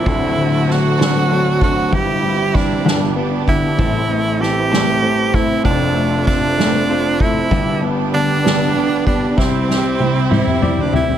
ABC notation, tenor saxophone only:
X:1
M:6/8
L:1/16
Q:3/8=64
K:C
V:1 name="Tenor saxophone"
E4 ^F6 F2 | G4 D4 z2 E2- | E4 G6 E2 | D4 D6 E2- |
E2 z2 D6 D2 | C6 E3 D E2 |]